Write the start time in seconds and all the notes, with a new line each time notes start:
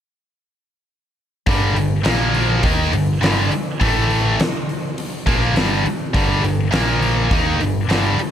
1.47 G1 G2 D3 G3, kick, open hi-hat
1.75 G1 G2 D3, open hi-hat
2.04 A#1 A#2 F3 A#3, snare, open hi-hat
2.34 open hi-hat
2.63 D#2 D#3 A#3 D#4, kick, open hi-hat
2.93 G1 G2 D3, open hi-hat
3.21 G1 G2 D3 G3, snare, open hi-hat
3.52 muted picked electric bass stroke, muted distorted electric guitar stroke, open hi-hat
3.80 A1 A2 E3 A3, kick, open hi-hat
4.10 open hi-hat
4.39 muted distorted electric guitar stroke, muted picked electric bass stroke, snare, open hi-hat
4.69 open hi-hat
4.98 open hi-hat
5.26 A#1 A#2 F3 A#3, kick, open hi-hat
5.55 G1 G2 D3 G3, snare, open hi-hat
5.85 muted distorted electric guitar stroke, muted picked electric bass stroke, open hi-hat
6.14 G1 G2 D3 G3, kick, open hi-hat
6.43 G1 G2 D3, open hi-hat
6.71 A#1 A#2 F3 A#3, snare, open hi-hat
7.02 open hi-hat
7.31 D#2 D#3 A#3 D#4, kick, open hi-hat
7.59 G1 G2 D3, open hi-hat
7.88 G1 G2 D3 G3, snare, open hi-hat
8.19 muted picked electric bass stroke, muted distorted electric guitar stroke, open hi-hat